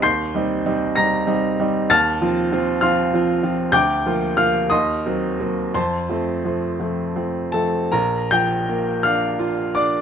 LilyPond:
<<
  \new Staff \with { instrumentName = "Grand piano" } { \time 6/8 \key bes \major \tempo 4. = 59 <c''' g''' c''''>4. <bes'' bes'''>4. | <a'' f''' a'''>4. <f'' c''' f'''>8 r4 | <g'' d''' g'''>4 <f'' f'''>8 <ees'' c''' ees'''>4. | <c'' a'' c'''>4. r4 <a' a''>8 |
<bes' bes''>8 <g'' g'''>4 <f'' f'''>4 <d'' d'''>8 | }
  \new Staff \with { instrumentName = "Grand piano" } { \time 6/8 \key bes \major ees,8 <g c' ees'>8 <g c' ees'>8 <g c' ees'>8 <g c' ees'>8 <g c' ees'>8 | ees,8 <f c' f'>8 <f c' f'>8 <f c' f'>8 <f c' f'>8 <f c' f'>8 | d,8 <f bes f'>8 <f bes f'>8 ees,8 <ges bes c'>8 <ges bes c'>8 | f,8 <f a c'>8 <f a c'>8 <f a c'>8 <f a c'>8 <f a c'>8 |
bes,,8 f8 bes8 d'8 f'8 d'8 | }
>>